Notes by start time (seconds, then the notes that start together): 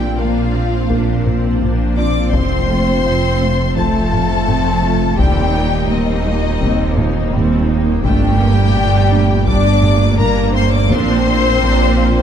Already playing: A#1 A#2 G3 A#3 C4 D4 F4 G4 C5 G5
0.18 A#1 A#2 F3 A#3 D4 F4 A#4 F5
0.55 C4 F4
0.90 A#1 A#2 A#3 D4, taiko
1.27 C4 F4 A#4, taiko low-mid
1.62 A#1 A#2 A#3 D4 F4, taiko low-mid
1.97 C4 D4 F4 D5 D6
2.31 F1 F2 F3 A3 C4 F4 C5 C6, taiko
2.69 A3 F4
3.05 F1 F2 F3 C4 F4
3.41 A3 C4 F4
3.74 F1 F2 F3 A3 C4 A4 A5, taiko
4.12 A3 F4, taiko low-mid
4.47 F1 F2 F3 C4, taiko low-mid
4.83 A3 F4
5.17 D#1 D#2 A#2 C3 G3 C4 G4 C5 G5, taiko
5.55 D#3 A#3 D#4
5.88 D#2 D#3 G3 A#3 C4 D#4 D#5
6.26 G3 A#3 D#4
6.60 D#2 C3 G3 C4, taiko
6.97 A#3 D#4, taiko low-mid
7.32 D#2 G3 C4, taiko low-mid
7.69 D#3 A#3 D#4
8.04 G1 G2 G3 A3 D4 G4 G5, taiko
8.41 A3 A#3
8.75 G1 G2 A3 D4 G4
9.11 A3 A#3 D4
9.46 G1 G2 G3 A3 D4 D5 D6, taiko
9.83 A3 A#3 G4, taiko low-mid
10.18 G1 G2 A#3 D4 A#4 A#5, taiko low-mid
10.52 A3 A#3 C4 C5 C6
10.71 D4 D5 D6
10.89 A#1 A#2 A#3 C4 D4 F4 A#4 C5 C6, taiko
11.26 A#3 C4 D4
11.61 A#1 A#2 C4 D4 A#4
11.97 A#3 C4 F4